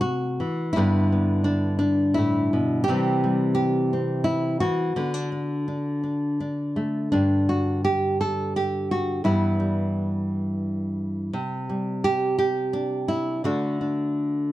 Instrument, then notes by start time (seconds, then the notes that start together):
nylon-string guitar
Already playing: C3 A3
0.01 F#4
0.40 E3
0.73 G2 E4
0.77 D3 B3 D4
1.12 B3
1.44 D4
1.79 D4
2.14 A2 E4
2.53 B2
2.84 G4
2.88 C3 E3 G3 C4
3.24 G3
3.55 G4
3.93 C4
4.24 E4
4.60 E3 F#4
4.96 D3 B3
5.14 D4
5.32 D4
5.68 D4
6.04 D4
6.40 D4
6.76 A3
7.12 G2 D4
7.49 F#4
7.85 G4
8.21 A4
8.56 G4
8.91 F#4
9.24 G2 E3 G3 B3 E4
9.60 G3
11.33 C3
11.69 G3
12.04 G4
12.39 G4
12.73 D4
13.08 E4
13.44 D3 A3 D4 F#4
13.81 D4